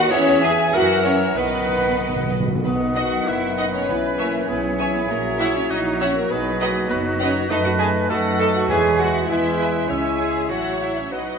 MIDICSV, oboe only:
0, 0, Header, 1, 2, 480
1, 0, Start_track
1, 0, Key_signature, 5, "major"
1, 0, Tempo, 628931
1, 91, Time_signature, 2, 2, 24, 8
1, 2493, Tempo, 602410
1, 5862, Key_signature, 4, "major"
1, 7773, Tempo, 623053
1, 8922, End_track
2, 0, Start_track
2, 0, Title_t, "Oboe"
2, 0, Program_c, 0, 68
2, 82, Note_on_c, 0, 68, 84
2, 567, Note_on_c, 0, 70, 76
2, 579, Note_off_c, 0, 68, 0
2, 1042, Note_on_c, 0, 71, 69
2, 1054, Note_off_c, 0, 70, 0
2, 1777, Note_off_c, 0, 71, 0
2, 2025, Note_on_c, 0, 75, 75
2, 2505, Note_on_c, 0, 71, 73
2, 2517, Note_off_c, 0, 75, 0
2, 3459, Note_off_c, 0, 71, 0
2, 3464, Note_on_c, 0, 68, 74
2, 4435, Note_on_c, 0, 66, 68
2, 4447, Note_off_c, 0, 68, 0
2, 4912, Note_off_c, 0, 66, 0
2, 4917, Note_on_c, 0, 68, 77
2, 5382, Note_off_c, 0, 68, 0
2, 5391, Note_on_c, 0, 66, 76
2, 5867, Note_on_c, 0, 71, 87
2, 5879, Note_off_c, 0, 66, 0
2, 6343, Note_on_c, 0, 69, 78
2, 6355, Note_off_c, 0, 71, 0
2, 6808, Note_off_c, 0, 69, 0
2, 6813, Note_on_c, 0, 73, 80
2, 7116, Note_off_c, 0, 73, 0
2, 7296, Note_on_c, 0, 71, 59
2, 7778, Note_on_c, 0, 76, 73
2, 7790, Note_off_c, 0, 71, 0
2, 8235, Note_off_c, 0, 76, 0
2, 8239, Note_on_c, 0, 73, 58
2, 8720, Note_on_c, 0, 71, 46
2, 8732, Note_off_c, 0, 73, 0
2, 8922, Note_off_c, 0, 71, 0
2, 8922, End_track
0, 0, End_of_file